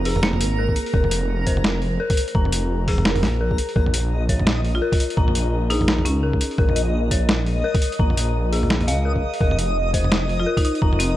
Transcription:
Already playing: detuned saw bass F1, synth bell A#4 C5 A#5, synth texture A#4
0.05 synth bell G#4, open hi-hat
0.16 mid tom
0.23 marimba A#3, snare
0.33 mid tom
0.40 detuned saw bass G#1, closed hi-hat
0.58 synth bell A#4
0.69 kick
0.76 closed hi-hat
0.86 open hi-hat
0.93 detuned saw bass F1, synth bell A#4, kick
1.04 mid tom
1.11 closed hi-hat
1.47 synth bell C5, kick, closed hi-hat
1.57 mid tom
1.64 snare
1.82 open hi-hat
2.00 synth bell A#4
2.10 kick, open hi-hat
2.17 closed hi-hat
2.28 closed hi-hat
2.35 detuned saw bass F1, synth bell A#5, kick
2.45 mid tom
2.52 closed hi-hat
2.88 synth bell G#4, kick, open hi-hat
2.98 mid tom
3.05 snare
3.16 mid tom, open hi-hat
3.23 detuned saw bass A#1, snare, open hi-hat
3.41 synth bell A#4
3.51 kick
3.58 closed hi-hat
3.69 open hi-hat
3.76 detuned saw bass A#1, synth bell A#4, synth texture D#5, kick
3.86 mid tom
3.94 closed hi-hat
4.29 synth bell C#5, kick, closed hi-hat
4.40 mid tom
4.47 snare
4.65 open hi-hat
4.75 marimba F4
4.82 synth bell A#4
4.92 kick, open hi-hat
5.00 closed hi-hat
5.10 closed hi-hat
5.17 detuned saw bass A#1, synth bell A#5, kick
5.28 mid tom
5.35 closed hi-hat
5.70 marimba D#4, synth bell G#4, open hi-hat
5.81 mid tom
5.88 snare
5.99 mid tom
6.05 detuned saw bass C#2, marimba C#4, closed hi-hat
6.23 synth bell A#4
6.33 kick
6.41 closed hi-hat
6.51 open hi-hat
6.58 detuned saw bass A#1, synth bell A#4, kick
6.69 mid tom
6.76 closed hi-hat
7.11 synth bell C#5, kick, closed hi-hat
7.29 snare
7.46 open hi-hat
7.64 synth bell A#4
7.75 kick, open hi-hat
7.82 closed hi-hat
7.92 closed hi-hat
7.99 detuned saw bass A#1, synth bell A#5, kick
8.10 mid tom
8.17 closed hi-hat
8.52 synth bell G#4, open hi-hat
8.63 mid tom
8.70 snare
8.81 mid tom, open hi-hat
8.87 detuned saw bass C#2, synth bell F5, closed hi-hat
9.05 synth bell A#4
9.16 kick
9.34 open hi-hat
9.40 detuned saw bass F1, synth bell A#4, kick
9.51 mid tom
9.59 closed hi-hat
9.94 synth bell C5, kick, closed hi-hat
10.04 mid tom
10.12 snare
10.29 open hi-hat
10.40 marimba F4
10.46 synth bell A#4
10.57 marimba D#4, kick, open hi-hat
10.65 marimba D#4, closed hi-hat
10.75 closed hi-hat
10.82 detuned saw bass F1, synth bell A#5, kick
10.93 mid tom
10.99 marimba C4, closed hi-hat

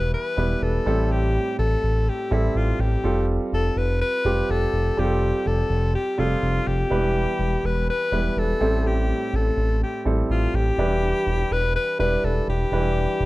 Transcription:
Already playing: analog synth bass E1, grand piano E3 G3 B3 E4 B4, alto saxophone B4
0.14 alto saxophone B4
0.37 analog synth bass E1, grand piano G3 B3 E4 B4
0.62 analog synth bass E1, alto saxophone A4
0.86 analog synth bass A1, grand piano A2 G3 C4 E4 A4
1.12 alto saxophone G4
1.59 analog synth bass A1, alto saxophone A4
1.83 analog synth bass A1
2.09 alto saxophone G4
2.31 analog synth bass A1, grand piano G3 C4 E4 A4, alto saxophone E4
2.55 analog synth bass A1, alto saxophone F4
2.79 analog synth bass A1, alto saxophone G4
3.04 analog synth bass F1, grand piano G3 C4 F4 A4
3.52 analog synth bass F1, alto saxophone A4
3.77 analog synth bass F1, alto saxophone B4
4.01 alto saxophone B4
4.25 analog synth bass F1, grand piano G3 C4 F4 G4
4.49 analog synth bass F1, alto saxophone A4
4.73 analog synth bass F1
4.97 analog synth bass F1, grand piano G3 C4 F4 G4, alto saxophone G4
5.04 grand piano A4
5.46 analog synth bass F1, alto saxophone A4
5.70 analog synth bass F1
5.95 alto saxophone G4
6.18 analog synth bass F1, grand piano G3 C4 F4 A4, alto saxophone F4
6.43 analog synth bass F1
6.67 analog synth bass F1, alto saxophone G4
6.90 analog synth bass E1, grand piano E3 G3 B3 E4 B4
7.39 analog synth bass E1
7.64 analog synth bass E1, alto saxophone B4
7.90 alto saxophone B4
8.12 analog synth bass E1, grand piano G3 B3 E4 B4
8.37 analog synth bass E1, alto saxophone A4
8.60 analog synth bass A1, grand piano A2 G3 C4 E4 A4
8.87 alto saxophone G4
9.33 analog synth bass A1, alto saxophone A4
9.57 analog synth bass A1
9.83 alto saxophone G4
10.05 analog synth bass A1, grand piano G3 C4 E4 A4
10.30 analog synth bass A1, alto saxophone F4
10.54 analog synth bass A1, alto saxophone G4
10.78 analog synth bass E1, grand piano E3 G3 D4 E4 B4
11.27 analog synth bass E1
11.51 analog synth bass E1, alto saxophone B4
11.76 alto saxophone B4
11.99 analog synth bass E1, grand piano G3 D4 E4 B4, alto saxophone B4
12.24 analog synth bass E1, alto saxophone A4
12.48 analog synth bass E1, alto saxophone G4
12.72 analog synth bass E1, grand piano E3 G3 D4 E4 B4
13.20 analog synth bass E1

